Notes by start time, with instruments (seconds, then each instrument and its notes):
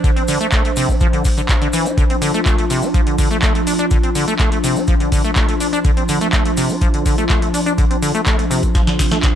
Already playing: ambient pad F3 D4 C5
0.04 acid bass D3, kick, closed hi-hat, shaker
0.16 acid bass C4, closed hi-hat
0.28 acid bass D3, open hi-hat, shaker
0.40 acid bass A3, closed hi-hat, shaker
0.52 acid bass A3, kick, clap, closed hi-hat, shaker
0.65 acid bass A3, closed hi-hat
0.76 acid bass C3, open hi-hat, shaker
0.89 acid bass D4, kick, shaker
1.00 acid bass F3, kick, closed hi-hat, shaker
1.13 acid bass D3, closed hi-hat
1.25 acid bass D3, kick, open hi-hat, shaker
1.37 acid bass D3, closed hi-hat, shaker
1.49 acid bass F3, kick, clap, closed hi-hat, shaker
1.61 acid bass D3, closed hi-hat
1.73 acid bass E3, open hi-hat, shaker
1.86 acid bass F4, closed hi-hat, shaker
1.97 acid bass D3, ambient pad F4, kick, closed hi-hat, shaker
2.10 acid bass C4, closed hi-hat
2.22 acid bass D3, open hi-hat, shaker
2.34 acid bass A3, closed hi-hat, shaker
2.46 acid bass A3, kick, clap, closed hi-hat, shaker
2.58 acid bass A3, closed hi-hat
2.70 acid bass C3, open hi-hat, shaker
2.82 acid bass D4, shaker
2.94 acid bass F3, kick, closed hi-hat, shaker
3.07 acid bass D3, closed hi-hat
3.18 acid bass D3, kick, open hi-hat, shaker
3.31 acid bass A3, closed hi-hat, shaker
3.42 acid bass A3, kick, clap, closed hi-hat, shaker
3.55 acid bass A3, closed hi-hat
3.67 acid bass D4, open hi-hat, shaker
3.79 acid bass D4, closed hi-hat, shaker
3.91 acid bass D3, kick, closed hi-hat, shaker
4.03 acid bass C4, closed hi-hat
4.15 acid bass D3, open hi-hat, shaker
4.28 acid bass A3, closed hi-hat, shaker
4.39 acid bass A3, kick, clap, closed hi-hat, shaker
4.52 acid bass A3, closed hi-hat
4.64 acid bass C3, open hi-hat, shaker
4.76 acid bass D4, shaker
4.87 acid bass F3, kick, closed hi-hat, shaker
5.00 acid bass D3, closed hi-hat
5.12 acid bass D3, kick, open hi-hat, shaker
5.24 acid bass A3, closed hi-hat, shaker
5.36 acid bass A3, kick, clap, closed hi-hat, shaker
5.49 acid bass A3, closed hi-hat
5.60 acid bass D4, open hi-hat, shaker
5.73 acid bass D4, closed hi-hat, shaker
5.84 acid bass D3, kick, closed hi-hat, shaker
5.97 acid bass C4, closed hi-hat
6.08 acid bass D3, open hi-hat, shaker
6.21 acid bass A3, closed hi-hat, shaker
6.33 acid bass A3, kick, clap, closed hi-hat, shaker
6.45 acid bass A3, closed hi-hat
6.57 acid bass C3, open hi-hat, shaker
6.69 acid bass D4, shaker
6.81 acid bass F3, kick, closed hi-hat, shaker
6.94 acid bass D3, closed hi-hat
7.06 acid bass D3, kick, open hi-hat, shaker
7.18 acid bass A3, closed hi-hat, shaker
7.29 acid bass A3, kick, clap, closed hi-hat, shaker
7.42 acid bass A3, closed hi-hat
7.54 acid bass D4, open hi-hat, shaker
7.66 acid bass D4, closed hi-hat, shaker
7.78 acid bass D3, kick, closed hi-hat, shaker
7.91 acid bass C4, closed hi-hat
8.02 acid bass D3, open hi-hat, shaker
8.15 acid bass A3, closed hi-hat, shaker
8.26 acid bass A3, kick, clap, closed hi-hat, shaker
8.39 acid bass A3, closed hi-hat
8.51 acid bass C3, open hi-hat, shaker
8.63 acid bass D4, kick, closed hi-hat, shaker
8.75 acid bass F3, kick, snare, closed hi-hat, shaker
8.87 acid bass D3, snare, closed hi-hat
8.99 acid bass C3, kick, snare, open hi-hat, shaker
9.11 acid bass A3, snare, closed hi-hat, shaker
9.23 acid bass D2, kick, snare, clap, closed hi-hat, shaker